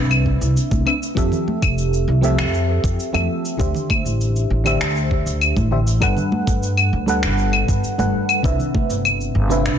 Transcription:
0.00 0.37 C2 medium
0.00 0.82 C3 medium
0.00 0.82 C4 medium
0.00 0.83 D4 medium
0.00 0.83 B4 medium
0.00 0.84 E5 medium
0.11 cabasa soft
0.11 claves medium
0.26 kick medium
0.41 0.54 C2 medium
0.41 cabasa medium
0.57 cabasa medium
0.71 0.84 C2 medium
0.71 kick medium
0.71 high conga medium
0.71 cabasa soft
0.86 0.94 C3 medium
0.86 0.94 C4 medium
0.86 0.94 D4 medium
0.86 0.95 B4 medium
0.86 0.95 E5 medium
0.86 claves medium
1.03 cabasa medium
1.15 1.29 F2 medium
1.15 2.18 F3 medium
1.15 2.19 C4 medium
1.15 2.19 G4 medium
1.15 2.20 A4 medium
1.15 2.20 E5 medium
1.15 kick loud
1.15 cabasa medium
1.32 low conga medium
1.32 cabasa soft
1.48 high conga medium
1.62 2.03 F1 medium
1.62 kick loud
1.62 cabasa medium
1.62 claves medium
1.78 cabasa medium
1.93 cabasa soft
2.08 2.40 C2 medium
2.21 3.09 F3 medium
2.21 3.10 C4 medium
2.21 3.10 G4 medium
2.21 3.11 A4 medium
2.21 3.11 E5 loud
2.21 high conga medium
2.21 cabasa medium
2.38 2.79 F2 medium
2.38 finger snap medium
2.38 cabasa medium
2.38 claves medium
2.54 cabasa soft
2.84 2.96 F2 medium
2.84 kick loud
2.84 cabasa medium
3.00 cabasa medium
3.13 3.26 F2 medium
3.13 3.55 F3 medium
3.13 3.55 C4 medium
3.13 3.56 G4 medium
3.13 3.56 A4 medium
3.13 3.56 E5 medium
3.13 high conga medium
3.13 low conga medium
3.13 cabasa soft
3.13 claves medium
3.45 cabasa medium
3.57 3.72 D2 medium
3.57 4.61 D3 medium
3.57 4.61 D4 medium
3.57 4.62 G4 medium
3.57 4.62 C5 medium
3.57 4.62 E5 medium
3.57 kick loud
3.57 cabasa medium
3.74 low conga medium
3.74 cabasa soft
3.90 kick loud
3.90 high conga medium
3.90 claves medium
4.05 4.46 A1 medium
4.05 cabasa medium
4.21 cabasa soft
4.36 cabasa soft
4.50 4.75 A1 medium
4.64 5.67 D3 medium
4.64 5.68 D4 medium
4.64 5.68 G4 medium
4.64 5.68 C5 medium
4.64 5.69 E5 medium
4.64 high conga medium
4.64 cabasa medium
4.64 claves medium
4.81 5.22 D2 medium
4.81 finger snap medium
4.81 cabasa medium
4.97 cabasa soft
5.11 kick medium
5.26 5.51 D2 medium
5.26 cabasa medium
5.41 cabasa medium
5.41 claves medium
5.56 5.97 A1 medium
5.56 kick medium
5.56 high conga medium
5.56 cabasa soft
5.71 5.79 D3 medium
5.71 5.79 D4 medium
5.71 5.79 G4 medium
5.71 5.80 C5 medium
5.71 5.80 E5 medium
5.87 cabasa medium
6.00 6.14 G1 medium
6.00 7.03 G3 medium
6.00 7.04 D4 medium
6.00 7.04 A4 medium
6.00 7.04 B4 medium
6.00 7.05 F#5 medium
6.00 kick loud
6.00 cabasa medium
6.00 claves medium
6.17 low conga medium
6.17 cabasa soft
6.32 high conga medium
6.47 6.88 G2 medium
6.47 kick medium
6.47 cabasa medium
6.63 cabasa soft
6.77 cabasa soft
6.77 claves medium
6.93 7.24 D2 medium
7.06 7.94 G3 medium
7.06 7.95 D4 medium
7.06 7.95 A4 medium
7.06 7.96 B4 medium
7.06 7.96 F#5 medium
7.06 high conga medium
7.06 cabasa medium
7.23 7.64 G1 medium
7.23 finger snap medium
7.23 cabasa medium
7.38 cabasa soft
7.53 claves medium
7.68 7.81 G1 medium
7.68 kick medium
7.68 cabasa medium
7.84 cabasa soft
7.98 8.11 G1 medium
7.98 8.40 G3 medium
7.98 8.40 D4 medium
7.98 8.41 A4 medium
7.98 8.41 B4 medium
7.98 8.41 F#5 medium
7.98 high conga medium
7.98 low conga medium
7.98 cabasa soft
8.29 cabasa medium
8.29 claves medium
8.42 8.57 C2 medium
8.42 9.46 C3 medium
8.42 9.46 C4 medium
8.42 9.47 D4 medium
8.42 9.47 B4 medium
8.42 9.47 E5 medium
8.42 kick loud
8.42 cabasa soft
8.59 low conga medium
8.59 cabasa soft
8.74 kick medium
8.74 high conga medium
8.90 9.31 G1 medium
8.90 cabasa medium
9.05 cabasa soft
9.05 claves medium
9.21 cabasa soft
9.35 9.67 G1 medium
9.48 9.79 C3 medium
9.48 9.79 C4 medium
9.48 9.79 D4 medium
9.48 9.79 B4 medium
9.48 9.79 E5 medium
9.48 high conga medium
9.48 cabasa medium
9.65 9.79 C2 medium
9.65 finger snap medium
9.65 cabasa medium

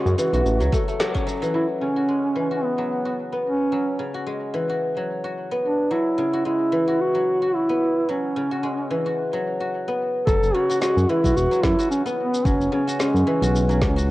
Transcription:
0.00 1.59 C#3 medium
0.00 1.59 G#3 medium
0.00 2.07 B3 medium
0.00 0.33 F#4 medium
0.00 1.00 F#4 loud
0.05 0.15 F#2 loud
0.05 shaker soft
0.18 1.41 E3 medium
0.18 shaker medium
0.33 0.42 B1 medium
0.33 1.96 F#4 medium
0.33 shaker soft
0.45 0.62 A1 medium
0.45 shaker soft
0.60 0.69 C#2 medium
0.60 0.98 F#3 medium
0.60 shaker soft
0.72 0.88 A3 loud
0.72 kick loud
0.72 shaker medium
0.88 2.14 A3 medium
0.88 shaker soft
1.00 1.26 F#3 loud
1.00 snare loud
1.00 shaker soft
1.15 4.04 C#4 loud
1.15 kick medium
1.15 shaker soft
1.27 1.53 F#3 loud
1.27 shaker medium
1.42 1.59 E3 medium
1.42 shaker soft
1.54 1.87 F#3 medium
1.54 1.67 E4 medium
1.81 3.98 C#3 medium
1.81 2.65 C#4 loud
1.96 2.50 F#4 medium
2.08 4.25 G#3 medium
2.35 4.05 E3 medium
2.51 3.05 F#4 medium
2.64 3.18 B3 medium
2.78 3.71 F#3 medium
3.05 4.14 F#4 medium
3.32 5.51 B3 medium
3.45 3.96 C#4 loud
3.72 4.05 F#3 medium
3.99 6.17 C#3 medium
4.14 4.69 F#4 medium
4.26 6.44 G#3 medium
4.54 6.23 E3 medium
4.70 5.24 F#4 medium
4.97 5.89 F#3 medium
5.24 6.33 F#4 medium
5.51 7.69 B3 medium
5.64 5.93 D4 medium
5.91 6.23 F#3 medium
5.91 6.46 E4 medium
6.18 8.35 C#3 medium
6.33 6.87 F#4 medium
6.45 8.62 G#3 medium
6.45 7.03 E4 medium
6.72 8.41 E3 medium
6.88 7.42 F#4 medium
7.01 7.57 F#4 loud
7.15 8.08 F#3 medium
7.42 8.51 F#4 medium
7.55 8.09 E4 loud
7.69 9.87 B3 medium
8.09 8.41 F#3 medium
8.09 9.15 C#4 medium
8.36 10.32 C#3 medium
8.51 9.05 F#4 medium
8.63 10.32 G#3 medium
8.91 10.32 E3 medium
9.06 9.60 F#4 medium
9.33 10.26 F#3 medium
9.60 10.69 F#4 medium
9.88 12.05 B3 medium
10.27 10.38 F#1 loud
10.27 10.59 F#3 medium
10.27 10.56 A4 loud
10.27 kick loud
10.27 shaker medium
10.42 10.51 F#1 medium
10.42 shaker soft
10.54 12.71 C#3 medium
10.54 10.81 F#4 loud
10.69 11.24 F#4 medium
10.69 shaker medium
10.81 12.98 G#3 medium
10.81 11.10 F#4 loud
10.81 snare medium
10.81 shaker medium
10.96 11.05 F#2 medium
10.96 shaker soft
11.09 12.78 E3 medium
11.09 11.38 E4 medium
11.24 11.33 B1 medium
11.24 11.78 F#4 medium
11.24 kick medium
11.24 shaker medium
11.36 11.47 E1 medium
11.36 11.65 F#4 loud
11.36 shaker medium
11.51 12.44 F#3 medium
11.51 shaker soft
11.63 11.75 F#2 medium
11.63 11.90 E4 medium
11.63 kick loud
11.63 snare medium
11.79 12.87 F#4 medium
11.79 shaker medium
11.90 12.03 C#4 loud
11.90 shaker medium
12.06 14.11 B3 medium
12.06 shaker soft
12.18 12.47 B3 medium
12.34 shaker medium
12.45 12.56 F#1 loud
12.45 12.78 F#3 medium
12.45 12.72 C#4 medium
12.45 kick loud
12.45 shaker medium
12.60 12.69 F#1 medium
12.60 shaker soft
12.72 14.11 C#3 medium
12.72 12.98 C#4 medium
12.87 13.42 F#4 medium
12.87 shaker medium
12.99 14.11 G#3 medium
12.99 14.05 C#4 medium
12.99 snare medium
12.99 shaker medium
13.14 13.23 F#2 loud
13.14 shaker soft
13.27 14.11 E3 medium
13.42 13.83 B1 medium
13.42 13.96 F#4 medium
13.42 shaker medium
13.55 shaker medium
13.69 14.11 F#3 medium
13.69 shaker soft
13.81 14.11 C#2 medium
13.81 kick loud
13.81 snare medium
13.96 14.11 F#4 medium
13.96 shaker medium

